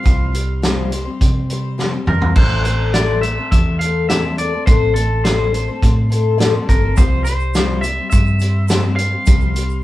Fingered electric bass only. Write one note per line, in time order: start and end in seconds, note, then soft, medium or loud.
0.06 1.06 C2 medium
1.21 1.97 C3 medium
2.07 2.32 E2 medium
2.36 3.37 A1 medium
3.52 4.52 E2 loud
4.67 5.67 A1 medium
5.83 6.58 A2 loud
6.69 6.94 G1 loud
6.98 7.98 C2 medium
8.13 9.13 G2 loud
9.28 9.84 C2 medium